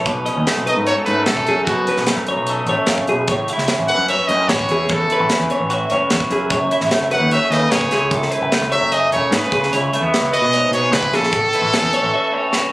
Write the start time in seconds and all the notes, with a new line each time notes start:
Already playing: A3
0.05 B1 B2 B4, kick, closed hi-hat
0.26 C#4 D#5, closed hi-hat
0.37 D#2
0.47 A3, snare, closed hi-hat
0.57 B1
0.66 F#3 B4 D#5, closed hi-hat
0.77 G#2
0.87 F#4 C#5, closed hi-hat
0.98 A4
1.05 F#2 G#2 B4, closed hi-hat
1.10 A3
1.24 B1 A4, snare, closed hi-hat
1.31 C#4
1.37 kick
1.47 F#2 C#4 G#4, closed hi-hat
1.64 F#2 F#4 A4, kick, closed hi-hat
1.69 B2
1.87 C#4 B4, closed hi-hat
1.97 B1, snare
2.06 snare, closed hi-hat
2.11 A3
2.16 F#2
2.27 C#5, closed hi-hat
2.31 F#3
2.36 B1
2.47 A4 D#5, closed hi-hat
2.66 A1 C#5, closed hi-hat
2.70 F#2 A3
2.87 F#2 C#3, snare, closed hi-hat
2.98 kick
3.07 B1 B2 G#4, closed hi-hat
3.28 A1 A2 C#5, kick, closed hi-hat
3.48 E5, closed hi-hat
3.53 E4
3.58 C#2, snare
3.68 snare, closed hi-hat
3.73 C#4
3.78 A1
3.88 E3 B4 F#5, closed hi-hat
3.98 F#2
4.08 F#4 C#5 E5, closed hi-hat
4.28 F#2 A2 C#4 B4 D#5, closed hi-hat
4.49 A1 F#4 C#5, snare, closed hi-hat
4.59 kick
4.69 E2 E4 G#4, closed hi-hat
4.89 E2 A2 A4, kick, closed hi-hat
5.10 E4 B4, closed hi-hat
5.20 A1
5.29 C#4, snare, closed hi-hat
5.40 E2
5.50 E3 C#5, closed hi-hat
5.60 A1
5.70 F#4 E5, closed hi-hat
5.90 F#1 A2 C#4 C#5, closed hi-hat
6.10 E2 F#4, snare, closed hi-hat
6.20 kick
6.30 F#2 E4 G#4, closed hi-hat
6.50 F#1 F#2 C#5, kick, closed hi-hat
6.71 E4 E5, closed hi-hat
6.81 A1, snare
6.91 A3, snare, closed hi-hat
7.01 F#1
7.11 F#3 B4 F#5, closed hi-hat
7.20 D#2
7.31 F#4 C#5 E5, closed hi-hat
7.43 G#4
7.50 D#2 C#3 A3 B4 D#5, snare, closed hi-hat
7.71 F#1 G#4 C#5, snare, closed hi-hat
7.81 kick
7.91 C#2 E4 G#4, snare, closed hi-hat
8.11 C#2 F#2 A4, kick, closed hi-hat
8.22 snare
8.31 E4 B4, closed hi-hat
8.42 F#1
8.52 A3, snare, closed hi-hat
8.61 C#2
8.72 F#3 C#5 E5, closed hi-hat
8.81 F#1
8.92 G#4 D#5 E5, closed hi-hat
9.12 E1 C#3 A3 C#5, closed hi-hat
9.31 G#2 G#4 B4, snare, closed hi-hat
9.52 C#2 C#3 G#4, kick, closed hi-hat
9.63 snare
9.72 C#2 E4 C#5, closed hi-hat
9.93 A3 E5, closed hi-hat
10.01 E2 B3
10.14 E3, snare, closed hi-hat
10.21 C#2
10.33 F#4 B4 D#5, closed hi-hat
10.41 B2 G#4
10.53 G#2 B3 C#5, closed hi-hat
10.71 B2 B4 C#5, closed hi-hat
10.77 G#4
10.91 C#2 E4 B4, snare, closed hi-hat
11.03 kick
11.11 A#1 C#3 G#4 A4, snare, closed hi-hat
11.24 snare
11.32 A1 A2 A4, kick, closed hi-hat
11.53 E4 B4, closed hi-hat
11.62 A1
11.73 C#4, snare, closed hi-hat
11.82 E2
11.93 E3 C#5, closed hi-hat
12.03 A1
12.14 F#4 E5
12.32 A2 C#4 C#5
12.52 F#4, snare